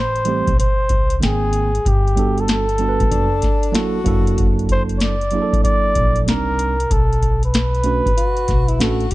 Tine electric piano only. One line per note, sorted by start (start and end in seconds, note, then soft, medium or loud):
0.25 0.51 E3 medium
0.25 0.51 G3 medium
0.25 0.52 A3 medium
0.25 0.52 C4 medium
0.25 0.53 G4 medium
1.20 1.69 D#3 medium
1.20 1.69 G#3 medium
1.20 1.70 A#3 medium
1.20 1.70 C4 medium
1.20 1.70 G5 medium
2.16 2.64 G3 medium
2.16 2.64 B3 medium
2.16 2.65 D4 medium
2.16 2.65 F#4 medium
2.16 2.66 A4 medium
2.79 3.27 G3 medium
2.79 3.27 B3 medium
2.79 3.28 D4 medium
2.79 3.28 F#4 medium
2.79 2.89 A4 medium
2.89 3.32 B4 medium
3.72 3.98 F#3 medium
3.72 3.98 A#3 medium
3.72 3.99 D4 medium
3.72 3.99 E4 medium
3.72 4.00 A4 medium
4.04 5.13 F#3 medium
4.04 5.14 A#3 medium
4.04 5.14 D4 medium
4.04 5.15 E4 medium
4.04 5.15 A4 loud
5.32 6.22 F#3 medium
5.32 6.23 A#3 medium
5.32 6.23 D4 medium
5.32 6.24 E4 medium
5.32 5.42 G#4 medium
5.42 6.27 A4 medium
6.26 6.74 G3 medium
6.26 6.75 C4 medium
6.26 6.75 D4 medium
6.26 6.76 D#4 soft
6.26 6.76 A#4 medium
7.84 8.09 A3 medium
7.84 8.09 C#4 medium
7.84 8.10 D4 medium
7.84 8.10 F#4 medium
7.84 8.11 B4 medium
8.79 9.04 A3 medium
8.79 9.05 C#4 medium
8.79 9.05 D4 medium
8.79 9.06 F#4 medium
8.79 9.06 A4 medium